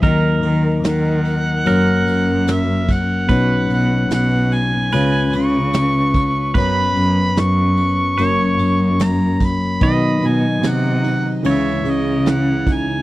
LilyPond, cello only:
\new Staff \with { instrumentName = "Cello" } { \clef bass \time 4/4 \key b \major \tempo 4 = 74 dis8 dis8 dis4 fis,8 fis,4. | b,8 b,8 b,4 cis8 cis4. | fis,8 fis,8 fis,4 fis,8 fis,4. | b,8 b,8 c4 cis8 cis4. | }